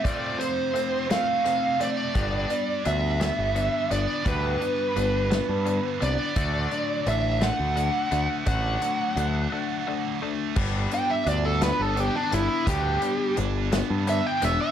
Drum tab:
CC |------|------|------|------|
HH |xxxxxx|xxxxxx|xxxxxx|xxxxxx|
SD |---o--|---o--|---o--|---o--|
BD |o-----|o-----|o-----|o-----|

CC |------|x-----|------|
HH |xxx---|-xxxxx|xxxxxx|
SD |------|---o--|---o--|
BD |o-----|o-----|o-----|